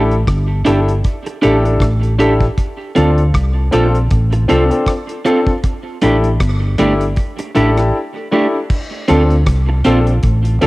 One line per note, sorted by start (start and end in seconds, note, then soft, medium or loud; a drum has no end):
0.00 0.23 A1 loud
0.00 0.13 D4 medium
0.00 0.13 E4 medium
0.00 0.13 G4 medium
0.00 0.13 A4 loud
0.11 closed hi-hat soft
0.27 0.61 G1 medium
0.27 kick loud
0.27 cross-stick loud
0.27 closed hi-hat medium
0.65 1.00 G1 medium
0.65 0.79 D4 medium
0.65 0.89 D4 medium
0.65 0.90 E4 medium
0.65 0.79 G4 medium
0.65 0.90 G4 medium
0.65 0.80 A4 medium
0.65 0.90 A4 medium
0.65 closed hi-hat medium
0.88 closed hi-hat soft
1.04 kick loud
1.04 closed hi-hat medium
1.26 muted clean electric guitar stroke soft
1.26 closed hi-hat medium
1.42 1.77 A1 medium
1.42 1.62 D4 loud
1.42 1.56 D4 medium
1.42 1.62 E4 medium
1.42 1.63 G4 medium
1.42 1.56 G4 medium
1.42 1.63 A4 loud
1.42 1.56 A4 medium
1.42 closed hi-hat medium
1.64 1.83 D4 medium
1.64 1.83 E4 medium
1.64 1.84 G4 medium
1.64 1.84 A4 medium
1.64 closed hi-hat soft
1.80 2.48 A1 medium
1.80 kick loud
1.80 cross-stick loud
1.80 closed hi-hat medium
2.03 2.09 G4 soft
2.03 2.09 A4 soft
2.03 closed hi-hat soft
2.18 2.43 D4 medium
2.18 2.33 D4 medium
2.18 2.43 E4 medium
2.18 2.43 G4 medium
2.18 2.33 G4 medium
2.18 2.43 A4 medium
2.18 2.33 A4 medium
2.18 closed hi-hat medium
2.41 kick loud
2.58 kick loud
2.58 closed hi-hat medium
2.95 3.30 D2 loud
2.95 3.19 C4 medium
2.95 3.09 C4 medium
2.95 3.20 D4 medium
2.95 3.20 F4 medium
2.95 3.09 F4 medium
2.95 3.20 A4 loud
2.95 3.10 A4 medium
2.95 closed hi-hat medium
3.18 closed hi-hat soft
3.34 3.68 C2 medium
3.34 kick loud
3.34 cross-stick loud
3.34 closed hi-hat medium
3.71 4.07 A#1 medium
3.71 3.96 C4 medium
3.71 3.86 C4 medium
3.71 3.96 D4 medium
3.71 3.96 F4 medium
3.71 3.86 F4 medium
3.71 3.96 A4 loud
3.71 3.87 A4 medium
3.71 closed hi-hat medium
3.95 closed hi-hat soft
4.11 4.45 A1 medium
4.11 kick loud
4.11 closed hi-hat medium
4.32 muted clean electric guitar stroke soft
4.32 closed hi-hat medium
4.48 4.69 C2 medium
4.48 4.69 C4 loud
4.48 4.63 C4 medium
4.48 4.69 D4 medium
4.48 4.69 F4 medium
4.48 4.63 F4 medium
4.48 4.70 A4 loud
4.48 4.63 A4 medium
4.48 closed hi-hat medium
4.70 4.90 C4 medium
4.70 4.90 D4 medium
4.70 4.90 F4 medium
4.70 4.90 A4 medium
4.70 closed hi-hat medium
4.86 kick medium
4.86 cross-stick loud
4.86 closed hi-hat medium
5.09 5.16 F4 soft
5.09 5.16 A4 soft
5.09 closed hi-hat soft
5.25 5.39 C4 medium
5.25 5.49 C4 medium
5.25 5.50 D4 medium
5.25 5.39 F4 medium
5.25 5.50 F4 medium
5.25 5.39 A4 medium
5.25 5.50 A4 loud
5.25 closed hi-hat medium
5.47 kick loud
5.64 kick loud
5.64 closed hi-hat medium
6.02 6.36 A1 loud
6.02 6.16 A3 medium
6.02 6.26 D4 medium
6.02 6.16 D4 medium
6.02 6.26 E4 medium
6.02 6.26 G4 medium
6.02 6.16 G4 medium
6.02 6.27 A4 medium
6.02 closed hi-hat medium
6.24 closed hi-hat soft
6.40 6.74 G1 medium
6.40 kick loud
6.40 cross-stick loud
6.40 closed hi-hat medium
6.78 7.13 G1 medium
6.78 6.92 A3 medium
6.78 7.03 D4 medium
6.78 6.93 D4 medium
6.78 7.03 E4 medium
6.78 7.03 G4 medium
6.78 6.93 G4 medium
6.78 7.03 A4 medium
6.78 closed hi-hat medium
7.01 closed hi-hat soft
7.16 kick loud
7.16 closed hi-hat medium
7.39 muted clean electric guitar stroke soft
7.39 closed hi-hat medium
7.54 7.90 A1 medium
7.54 7.69 A3 medium
7.54 7.75 D4 medium
7.54 7.69 D4 medium
7.54 7.76 E4 medium
7.54 7.76 G4 medium
7.54 7.70 G4 medium
7.54 7.76 A4 loud
7.54 closed hi-hat medium
7.77 7.96 D4 medium
7.77 7.96 E4 medium
7.77 7.97 G4 medium
7.77 7.97 A4 medium
7.77 cross-stick medium
7.77 closed hi-hat soft
8.16 8.22 G4 soft
8.16 8.22 A4 soft
8.31 8.46 A3 medium
8.31 8.56 D4 medium
8.31 8.46 D4 medium
8.31 8.56 E4 medium
8.31 8.56 G4 medium
8.31 8.46 G4 medium
8.31 8.56 A4 medium
8.70 kick loud
8.70 crash medium
9.08 9.43 D2 loud
9.08 9.32 C4 medium
9.08 9.22 C4 medium
9.08 9.32 D4 medium
9.08 9.22 F4 medium
9.08 9.33 F4 medium
9.08 9.22 A4 loud
9.08 9.33 A4 medium
9.08 closed hi-hat medium
9.30 closed hi-hat soft
9.46 9.80 C2 medium
9.46 kick loud
9.46 cross-stick loud
9.46 closed hi-hat medium
9.69 muted clean electric guitar stroke soft
9.84 10.19 A#1 medium
9.84 10.09 C4 medium
9.84 9.98 C4 medium
9.84 10.09 D4 medium
9.84 10.06 F4 medium
9.84 9.99 F4 medium
9.84 10.05 A4 loud
9.84 9.99 A4 medium
9.84 closed hi-hat medium
10.07 10.14 F4 soft
10.07 10.13 A4 soft
10.07 closed hi-hat soft
10.23 10.57 A1 medium
10.23 kick loud
10.23 closed hi-hat medium
10.45 closed hi-hat medium
10.61 10.67 C2 medium
10.61 10.67 C4 medium
10.61 10.67 D4 medium
10.61 10.67 F4 medium
10.61 10.67 A4 loud
10.61 10.67 A4 medium
10.61 closed hi-hat medium